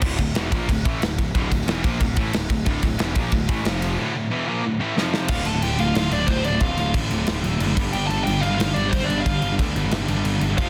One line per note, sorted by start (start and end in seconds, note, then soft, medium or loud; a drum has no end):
0.02 0.18 D1 loud
0.02 0.18 D2 medium
0.02 0.18 A2 loud
0.02 0.19 D3 loud
0.02 kick loud
0.02 crash loud
0.19 0.34 D1 medium
0.19 0.32 D2 medium
0.19 0.33 A2 medium
0.19 kick medium
0.19 ride medium
0.35 0.51 E1 medium
0.35 0.51 E2 medium
0.35 0.51 B2 medium
0.35 0.51 E3 loud
0.35 snare loud
0.35 ride loud
0.51 0.67 A#1 medium
0.51 0.67 A#2 medium
0.51 0.68 F3 loud
0.51 0.68 A#3 loud
0.51 kick loud
0.51 ride medium
0.68 0.84 D1 medium
0.68 0.82 D2 medium
0.68 0.81 A2 medium
0.68 kick loud
0.68 ride loud
0.85 1.00 A1 loud
0.85 1.00 A2 medium
0.85 1.01 E3 medium
0.85 1.02 A3 loud
0.85 kick loud
0.85 ride medium
1.01 1.17 D1 medium
1.01 1.15 D2 medium
1.01 1.15 A2 medium
1.01 snare loud
1.01 ride loud
1.11 snare soft
1.18 1.34 D1 medium
1.18 1.31 D2 medium
1.18 1.32 A2 medium
1.18 kick medium
1.18 ride medium
1.35 1.50 D1 loud
1.35 1.51 D2 medium
1.35 1.51 A2 medium
1.35 1.51 D3 loud
1.35 kick loud
1.35 ride loud
1.52 1.67 D1 medium
1.52 1.65 D2 medium
1.52 1.65 A2 medium
1.52 kick medium
1.52 ride medium
1.61 snare soft
1.67 1.83 E1 loud
1.67 1.84 E2 loud
1.67 1.84 B2 loud
1.67 1.84 E3 loud
1.67 snare loud
1.67 ride loud
1.84 2.00 A#1 medium
1.84 2.00 A#2 loud
1.84 2.00 F3 loud
1.84 2.00 A#3 loud
1.84 kick loud
1.84 ride medium
2.00 2.16 D1 medium
2.00 2.14 D2 medium
2.00 2.14 A2 medium
2.00 kick medium
2.00 ride loud
2.17 2.32 A1 loud
2.17 2.33 A2 medium
2.17 2.33 E3 medium
2.17 2.34 A3 loud
2.17 kick loud
2.17 ride medium
2.33 2.48 D1 medium
2.33 2.47 D2 medium
2.33 2.47 A2 medium
2.33 snare loud
2.33 ride loud
2.50 2.65 D1 medium
2.50 2.63 D2 medium
2.50 2.64 A2 medium
2.50 kick medium
2.50 ride medium
2.66 2.82 D1 loud
2.66 2.83 D2 medium
2.66 2.83 A2 loud
2.66 2.83 D3 loud
2.66 kick loud
2.66 ride loud
2.83 2.98 D1 medium
2.83 2.97 D2 medium
2.83 2.97 A2 medium
2.83 kick medium
2.83 ride medium
2.99 3.15 E1 medium
2.99 3.15 E2 medium
2.99 3.16 B2 loud
2.99 3.16 E3 loud
2.99 snare loud
2.99 ride loud
3.15 3.32 A#1 loud
3.15 3.32 A#2 loud
3.15 3.32 F3 loud
3.15 3.33 A#3 loud
3.15 kick loud
3.15 ride medium
3.32 3.48 D1 medium
3.32 3.46 D2 medium
3.32 3.46 A2 medium
3.32 kick loud
3.32 ride loud
3.49 3.64 A1 loud
3.49 3.65 A2 medium
3.49 3.65 E3 loud
3.49 3.65 A3 medium
3.49 kick loud
3.49 ride medium
3.65 3.96 F1 loud
3.65 3.97 F2 loud
3.65 3.98 C3 loud
3.65 3.98 F3 loud
3.65 snare loud
3.65 ride loud
3.75 snare soft
3.82 ride medium
3.98 4.13 D2 medium
3.98 4.13 A2 loud
3.98 4.15 D3 loud
4.14 4.28 D2 medium
4.14 4.28 A2 medium
4.31 4.47 E2 medium
4.31 4.47 B2 medium
4.31 4.48 E3 loud
4.47 4.63 A#2 loud
4.47 4.64 F3 loud
4.47 4.64 A#3 loud
4.65 4.78 D2 medium
4.65 4.78 A2 medium
4.81 4.96 A2 medium
4.81 4.97 E3 medium
4.81 4.97 A3 medium
4.97 5.29 F2 loud
4.97 5.29 C3 loud
4.97 5.30 F3 loud
4.97 snare medium
5.14 snare loud
5.28 5.44 D1 loud
5.28 5.45 D2 loud
5.28 5.44 A2 medium
5.28 5.46 D3 loud
5.28 5.46 F4 medium
5.28 5.47 F5 loud
5.28 kick loud
5.28 crash loud
5.28 crash medium
5.45 5.60 D1 medium
5.45 5.52 D2 medium
5.45 5.52 A2 medium
5.45 5.64 A4 medium
5.45 5.63 A5 loud
5.45 crash medium
5.53 5.61 D2 medium
5.53 5.62 A2 medium
5.62 5.77 D1 loud
5.62 5.78 D2 medium
5.62 5.78 A2 medium
5.62 5.81 G4 medium
5.62 5.80 G5 loud
5.62 crash medium
5.78 5.93 D1 medium
5.78 5.86 D2 medium
5.78 5.85 A2 medium
5.78 5.95 F4 medium
5.78 5.93 F5 loud
5.78 crash medium
5.87 5.94 D2 medium
5.87 5.94 A2 loud
5.94 6.09 D1 loud
5.94 6.02 D2 medium
5.94 6.01 A2 medium
5.94 6.14 F4 medium
5.94 6.13 F5 loud
5.94 snare loud
5.94 crash medium
6.03 6.08 D2 medium
6.03 6.08 A2 medium
6.09 6.26 D1 medium
6.09 6.18 D2 medium
6.09 6.17 A2 medium
6.09 6.27 D3 medium
6.09 6.29 D5 medium
6.09 crash medium
6.14 6.26 D2 medium
6.14 6.30 D4 medium
6.19 6.26 D2 medium
6.19 6.26 A2 medium
6.27 6.43 D1 loud
6.27 6.35 D2 medium
6.27 6.35 A2 loud
6.27 6.62 D3 medium
6.27 6.45 C4 medium
6.27 6.43 C5 medium
6.27 kick medium
6.27 crash medium
6.36 6.43 D2 medium
6.36 6.43 A2 medium
6.44 6.59 D1 medium
6.44 6.51 D2 medium
6.44 6.51 A2 medium
6.44 6.61 D4 medium
6.44 6.61 D5 medium
6.44 crash medium
6.53 6.60 D2 medium
6.53 6.61 A2 medium
6.60 6.76 D1 loud
6.60 6.76 D2 medium
6.60 6.76 A2 medium
6.60 7.42 D3 loud
6.60 6.92 F4 medium
6.60 6.92 F5 medium
6.60 kick medium
6.60 crash medium
6.77 6.92 D1 medium
6.77 6.85 D2 medium
6.77 6.85 A2 medium
6.77 crash medium
6.86 6.93 D2 medium
6.86 6.93 A2 medium
6.94 7.09 A1 medium
6.94 7.09 D2 medium
6.94 7.09 A2 loud
6.94 kick medium
6.94 crash medium
7.11 7.25 D1 medium
7.11 7.19 D2 medium
7.11 7.18 A2 loud
7.11 crash medium
7.20 7.26 D2 medium
7.20 7.27 A2 medium
7.27 7.42 D1 loud
7.27 7.34 D2 medium
7.27 7.34 A2 medium
7.27 snare loud
7.27 crash medium
7.36 7.43 D2 medium
7.36 7.43 A2 medium
7.43 7.58 D1 medium
7.43 7.51 D2 medium
7.43 7.51 A2 medium
7.43 7.59 D3 medium
7.43 crash medium
7.52 7.59 D2 medium
7.52 7.60 A2 medium
7.59 7.74 F#1 medium
7.59 7.68 D2 medium
7.59 7.68 A2 medium
7.59 7.77 D3 loud
7.59 crash medium
7.69 7.76 D2 medium
7.69 7.77 A2 medium
7.77 7.91 G1 medium
7.77 7.84 G2 medium
7.77 7.84 D3 loud
7.77 7.85 G3 loud
7.77 kick loud
7.77 crash loud
7.85 7.91 G2 medium
7.85 7.91 D3 medium
7.92 8.08 G1 loud
7.92 8.08 G2 medium
7.92 8.08 D3 medium
7.92 8.09 G4 loud
7.92 8.06 G5 loud
7.92 crash medium
8.07 8.24 G1 medium
8.07 8.17 G2 medium
8.07 8.16 D3 medium
8.07 8.23 A5 loud
8.07 crash medium
8.11 8.24 A4 medium
8.17 8.25 G2 medium
8.17 8.24 D3 medium
8.24 8.41 G1 medium
8.24 8.41 G2 medium
8.24 8.41 D3 medium
8.24 8.41 G4 medium
8.24 8.40 G5 loud
8.24 crash medium
8.40 8.58 G1 medium
8.40 8.50 G2 medium
8.40 8.49 D3 medium
8.40 8.54 F4 medium
8.40 8.54 F5 loud
8.40 crash medium
8.50 8.58 G2 medium
8.50 8.58 D3 medium
8.55 8.73 G1 medium
8.55 8.73 F4 medium
8.55 8.74 F5 loud
8.59 8.67 G2 medium
8.59 8.66 D3 medium
8.59 8.74 G3 medium
8.59 snare loud
8.59 crash medium
8.68 8.76 G2 medium
8.68 8.75 D3 medium
8.73 8.90 G1 loud
8.73 8.83 G2 medium
8.73 8.82 D3 medium
8.73 9.08 G3 medium
8.73 8.91 D4 medium
8.73 8.91 D5 medium
8.73 crash medium
8.84 8.91 G2 medium
8.84 8.92 D3 medium
8.89 9.00 G2 medium
8.89 9.06 C4 medium
8.89 9.08 C5 medium
8.93 9.07 G1 medium
8.93 8.99 D3 medium
8.93 kick medium
8.93 crash medium
9.01 9.08 G2 medium
9.01 9.08 D3 medium
9.01 9.20 D5 medium
9.07 9.23 G1 medium
9.07 9.16 G2 medium
9.07 9.16 D3 medium
9.07 9.23 D4 medium
9.07 crash medium
9.12 9.92 G3 loud
9.17 9.25 G2 medium
9.17 9.25 D3 medium
9.21 9.54 F4 medium
9.21 9.54 F5 medium
9.26 9.40 G1 loud
9.26 9.41 G2 medium
9.26 9.41 D3 medium
9.26 kick medium
9.26 crash medium
9.42 9.56 G1 loud
9.42 9.51 G2 medium
9.42 9.51 D3 medium
9.42 crash medium
9.52 9.58 G2 medium
9.52 9.58 D3 medium
9.59 9.73 D2 medium
9.59 9.74 G2 medium
9.59 9.74 D3 medium
9.59 kick loud
9.59 crash medium
9.76 9.90 G1 medium
9.76 9.84 G2 medium
9.76 9.84 D3 medium
9.76 crash medium
9.85 9.92 G2 medium
9.85 9.92 D3 medium
9.91 10.06 G1 medium
9.91 10.00 G2 medium
9.91 10.01 D3 loud
9.91 10.06 G3 medium
9.91 snare loud
9.91 crash medium
10.02 10.08 G2 medium
10.02 10.07 D3 medium
10.07 10.23 G1 loud
10.07 10.15 G2 medium
10.07 10.15 D3 medium
10.07 10.39 G3 medium
10.07 crash medium
10.16 10.24 G2 medium
10.16 10.24 D3 medium
10.24 10.39 G1 loud
10.24 10.32 G2 medium
10.24 10.32 D3 loud
10.24 crash medium
10.33 10.40 G2 medium
10.33 10.39 D3 medium
10.40 10.55 G1 medium
10.40 10.48 G2 medium
10.40 10.49 D3 medium
10.40 crash medium
10.50 10.57 G2 medium
10.50 10.58 D3 loud
10.57 10.70 F1 medium
10.57 10.70 F2 medium
10.57 10.70 C3 medium
10.57 10.70 F3 loud
10.57 10.70 F4 medium
10.57 10.70 F5 loud
10.57 kick loud
10.57 crash medium